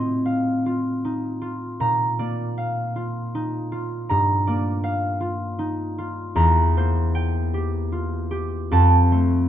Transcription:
0.00 1.84 A2 medium
0.00 1.84 C4 medium
0.00 0.65 F4 medium
0.00 1.84 D#5 medium
0.00 0.24 F5 medium
0.00 1.84 C6 medium
0.25 2.56 F5 medium
0.66 1.40 F4 medium
1.05 1.71 D#4 medium
1.41 2.95 F4 medium
1.80 4.12 A#2 medium
1.80 4.08 A#5 medium
2.19 4.46 A#3 medium
2.19 4.46 D5 medium
2.58 4.82 F5 medium
2.96 3.71 F4 medium
3.35 3.99 D#4 medium
3.72 5.19 F4 medium
4.09 6.40 G2 medium
4.09 6.35 A#5 medium
4.47 6.76 A#3 medium
4.47 6.40 D5 medium
4.84 6.39 F5 medium
5.21 5.97 F4 medium
5.59 6.24 D#4 medium
5.98 6.40 F4 medium
6.35 8.75 E2 medium
6.35 8.75 A#5 medium
6.77 8.76 A#3 medium
6.77 9.11 C5 medium
7.15 8.75 G5 medium
7.54 8.30 G4 medium
7.92 8.60 F4 medium
8.31 8.75 G4 medium
8.71 9.49 F2 medium
8.71 9.49 A5 medium
9.12 9.49 A3 medium
9.12 9.49 C5 medium

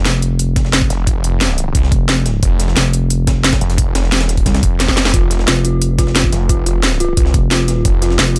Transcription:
0.05 0.89 F1 medium
0.05 snare loud
0.05 closed hi-hat medium
0.14 closed hi-hat soft
0.22 closed hi-hat medium
0.39 closed hi-hat medium
0.56 kick loud
0.56 snare medium
0.56 closed hi-hat medium
0.65 snare soft
0.73 snare loud
0.73 closed hi-hat medium
0.82 kick loud
0.90 1.74 F1 loud
0.90 snare soft
0.90 closed hi-hat medium
1.07 kick loud
1.07 closed hi-hat medium
1.24 closed hi-hat medium
1.41 snare loud
1.41 closed hi-hat medium
1.49 snare soft
1.58 closed hi-hat medium
1.75 1.90 C2 medium
1.75 kick loud
1.75 closed hi-hat medium
1.83 snare soft
1.92 2.41 F1 loud
1.92 kick loud
1.92 closed hi-hat medium
2.09 snare loud
2.09 closed hi-hat medium
2.26 snare soft
2.26 closed hi-hat medium
2.43 2.75 F1 medium
2.43 kick loud
2.43 closed hi-hat medium
2.60 snare soft
2.60 closed hi-hat medium
2.68 snare soft
2.77 3.60 F1 loud
2.77 snare loud
2.77 closed hi-hat medium
2.85 closed hi-hat soft
2.93 closed hi-hat medium
3.10 closed hi-hat medium
3.27 kick loud
3.27 snare loud
3.27 closed hi-hat medium
3.44 snare soft
3.44 snare loud
3.44 closed hi-hat medium
3.53 kick medium
3.53 snare loud
3.53 closed hi-hat medium
3.61 4.20 F1 loud
3.61 closed hi-hat medium
3.70 snare soft
3.70 closed hi-hat medium
3.78 kick loud
3.78 closed hi-hat medium
3.95 snare loud
3.95 closed hi-hat medium
4.04 snare soft
4.12 snare loud
4.12 closed hi-hat medium
4.20 4.45 E1 loud
4.20 snare loud
4.20 closed hi-hat medium
4.29 snare soft
4.29 closed hi-hat medium
4.37 kick medium
4.37 closed hi-hat medium
4.46 4.62 C2 loud
4.46 kick loud
4.46 snare loud
4.46 closed hi-hat medium
4.54 snare loud
4.54 closed hi-hat medium
4.63 5.12 F1 loud
4.63 kick loud
4.63 closed hi-hat medium
4.80 snare loud
4.80 snare medium
4.80 closed hi-hat medium
4.88 kick medium
4.88 snare medium
4.97 snare medium
4.97 snare loud
4.97 closed hi-hat medium
5.05 snare medium
5.05 snare loud
5.05 closed hi-hat medium
5.14 5.46 F1 loud
5.14 5.23 F4 medium
5.14 kick loud
5.14 closed hi-hat medium
5.31 snare soft
5.31 closed hi-hat medium
5.39 snare soft
5.48 6.31 F1 loud
5.48 5.57 F4 medium
5.48 snare loud
5.48 closed hi-hat medium
5.56 closed hi-hat soft
5.65 5.74 F4 medium
5.65 closed hi-hat medium
5.82 closed hi-hat medium
5.99 6.08 F4 loud
5.99 kick loud
5.99 snare medium
5.99 closed hi-hat medium
6.07 snare soft
6.15 6.25 F4 medium
6.15 snare loud
6.15 closed hi-hat medium
6.15 closed hi-hat loud
6.24 kick loud
6.32 7.16 F1 loud
6.32 snare soft
6.32 closed hi-hat medium
6.49 6.59 F4 loud
6.49 kick loud
6.49 closed hi-hat medium
6.66 6.76 F4 medium
6.66 closed hi-hat medium
6.83 snare loud
6.83 closed hi-hat medium
6.92 snare soft
7.00 7.10 F4 loud
7.00 closed hi-hat medium
7.17 7.33 C2 loud
7.17 7.27 F4 medium
7.17 kick loud
7.17 closed hi-hat medium
7.26 snare soft
7.34 7.84 F1 loud
7.34 kick loud
7.34 closed hi-hat medium
7.51 7.61 F4 loud
7.51 snare loud
7.51 closed hi-hat loud
7.51 closed hi-hat medium
7.68 7.78 F4 medium
7.68 snare soft
7.68 closed hi-hat medium
7.85 8.18 F1 loud
7.85 kick loud
7.85 closed hi-hat medium
8.02 8.12 F4 loud
8.02 snare soft
8.02 closed hi-hat medium
8.10 snare soft
8.19 8.39 F1 loud
8.19 8.29 F4 medium
8.19 snare loud
8.19 closed hi-hat medium
8.27 closed hi-hat soft
8.36 closed hi-hat medium

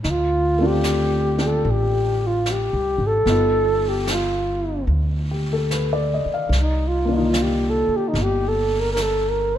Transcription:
0.04 1.61 D2 medium
0.04 0.12 D#4 medium
0.04 brush sweep soft
0.04 snare soft
0.10 0.69 F4 medium
0.58 3.26 A3 soft
0.58 3.27 C4 soft
0.58 1.37 D4 soft
0.63 1.38 F4 soft
0.63 1.48 G4 medium
0.84 snare soft
0.84 hi-hat pedal soft
1.38 3.27 D4 soft
1.38 3.28 F4 soft
1.38 3.28 G4 soft
1.38 snare soft
1.46 1.72 A4 medium
1.65 2.69 A1 medium
1.65 brush sweep soft
1.71 2.28 G4 medium
2.27 2.53 F4 medium
2.46 snare soft
2.46 hi-hat pedal soft
2.51 3.08 G4 medium
2.73 2.98 C2 soft
2.98 3.24 G#1 medium
3.07 3.90 A4 medium
3.25 4.84 G1 medium
3.25 6.51 B3 soft
3.25 6.53 D#4 soft
3.25 brush sweep soft
3.25 snare soft
3.30 6.53 F4 soft
3.89 4.11 G4 medium
4.07 snare soft
4.07 hi-hat pedal soft
4.13 4.87 F4 medium
4.87 6.22 D2 medium
4.87 brush sweep soft
5.31 5.55 G4 soft
5.53 5.80 A4 soft
5.71 6.10 B4 soft
5.71 snare soft
5.71 hi-hat pedal soft
5.93 6.27 D5 soft
6.14 6.37 D#5 soft
6.26 muted upright bass stroke soft
6.34 6.61 F5 soft
6.49 7.84 C2 medium
6.49 brush sweep soft
6.49 snare soft
6.61 6.89 D#4 medium
6.88 7.17 F4 medium
7.05 9.58 A#3 soft
7.05 9.58 D4 soft
7.13 9.58 D#4 soft
7.13 7.31 D#4 medium
7.17 9.58 F4 soft
7.30 7.44 F4 medium
7.34 snare soft
7.34 hi-hat pedal soft
7.42 7.72 G4 medium
7.70 7.98 A4 medium
7.88 muted upright bass stroke soft
7.97 8.10 G4 medium
8.08 8.24 D#4 medium
8.14 9.58 G1 medium
8.14 brush sweep soft
8.14 snare soft
8.22 8.50 G4 medium
8.48 8.82 A4 medium
8.80 8.88 A#4 medium
8.93 9.04 A#4 medium
8.93 snare soft
8.93 hi-hat pedal soft
9.02 9.31 A4 medium
9.29 9.57 A#4 medium

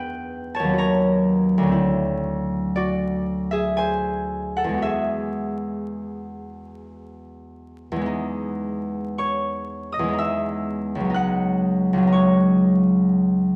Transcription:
0.00 0.74 E2 medium
0.00 0.76 B3 soft
0.00 0.79 D4 soft
0.00 0.81 E4 soft
0.00 0.84 B4 medium
0.00 0.83 G5 medium
0.55 0.78 C#5 medium
0.55 0.96 A5 medium
0.60 1.71 D#2 medium
0.64 1.62 F#3 soft
0.69 1.76 C#4 soft
0.73 2.76 F#4 soft
0.78 1.81 C#5 medium
0.78 1.80 A#5 medium
1.58 4.79 D2 medium
1.63 5.53 F#3 soft
1.67 4.84 C4 soft
1.72 5.62 E4 soft
2.76 4.76 F#4 medium
2.76 4.88 D5 medium
3.51 4.83 G#4 medium
3.51 4.81 E5 medium
3.77 4.89 C5 medium
3.77 5.14 G#5 medium
4.57 4.89 A4 medium
4.57 8.14 F#5 medium
4.64 7.90 E2 medium
4.69 7.95 G#3 soft
4.74 8.00 B3 soft
4.74 8.11 F#4 soft
4.82 8.74 G#4 medium
4.82 8.72 E5 medium
7.92 9.98 E2 medium
7.96 10.02 G#3 medium
8.02 10.07 B3 medium
8.06 10.12 D#4 medium
9.18 12.12 C#5 medium
9.18 10.43 C#6 medium
9.92 13.56 D#5 medium
9.92 13.56 D#6 medium
9.99 11.09 E2 medium
10.03 13.56 G#3 soft
10.08 11.04 B3 soft
10.13 11.09 D#4 soft
10.18 13.56 E5 medium
10.18 13.56 E6 medium
10.95 11.92 C#2 medium
11.00 11.97 F#3 medium
11.05 12.01 B3 soft
11.10 12.06 D#4 soft
11.14 13.56 F#5 medium
11.14 13.56 F#6 loud
11.93 13.56 C#2 medium
11.98 13.56 F#3 soft
12.03 13.56 B3 soft
12.07 13.56 D#4 medium
12.12 13.56 C#5 medium
12.12 13.56 C#6 medium

